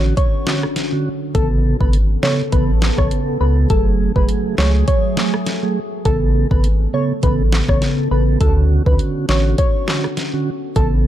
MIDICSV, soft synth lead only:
0, 0, Header, 1, 2, 480
1, 0, Start_track
1, 0, Tempo, 588235
1, 1100, Time_signature, 4, 2, 24, 8
1, 9033, End_track
2, 0, Start_track
2, 0, Title_t, "Soft synth lead"
2, 0, Program_c, 0, 80
2, 139, Note_on_c, 0, 73, 97
2, 491, Note_off_c, 0, 73, 0
2, 1099, Note_on_c, 0, 69, 105
2, 1190, Note_off_c, 0, 69, 0
2, 1474, Note_on_c, 0, 71, 82
2, 1546, Note_off_c, 0, 71, 0
2, 1820, Note_on_c, 0, 73, 78
2, 1911, Note_off_c, 0, 73, 0
2, 2060, Note_on_c, 0, 71, 83
2, 2150, Note_off_c, 0, 71, 0
2, 2434, Note_on_c, 0, 73, 71
2, 2506, Note_off_c, 0, 73, 0
2, 2780, Note_on_c, 0, 71, 85
2, 2870, Note_off_c, 0, 71, 0
2, 3020, Note_on_c, 0, 69, 108
2, 3111, Note_off_c, 0, 69, 0
2, 3394, Note_on_c, 0, 71, 83
2, 3465, Note_off_c, 0, 71, 0
2, 3739, Note_on_c, 0, 73, 79
2, 3830, Note_off_c, 0, 73, 0
2, 3980, Note_on_c, 0, 73, 97
2, 4332, Note_off_c, 0, 73, 0
2, 4940, Note_on_c, 0, 69, 101
2, 5031, Note_off_c, 0, 69, 0
2, 5314, Note_on_c, 0, 71, 77
2, 5385, Note_off_c, 0, 71, 0
2, 5662, Note_on_c, 0, 73, 77
2, 5752, Note_off_c, 0, 73, 0
2, 5902, Note_on_c, 0, 71, 81
2, 5992, Note_off_c, 0, 71, 0
2, 6276, Note_on_c, 0, 73, 70
2, 6347, Note_off_c, 0, 73, 0
2, 6621, Note_on_c, 0, 71, 82
2, 6711, Note_off_c, 0, 71, 0
2, 6859, Note_on_c, 0, 69, 111
2, 6950, Note_off_c, 0, 69, 0
2, 7234, Note_on_c, 0, 71, 84
2, 7305, Note_off_c, 0, 71, 0
2, 7581, Note_on_c, 0, 73, 79
2, 7671, Note_off_c, 0, 73, 0
2, 7821, Note_on_c, 0, 73, 96
2, 8173, Note_off_c, 0, 73, 0
2, 8780, Note_on_c, 0, 69, 104
2, 8871, Note_off_c, 0, 69, 0
2, 9033, End_track
0, 0, End_of_file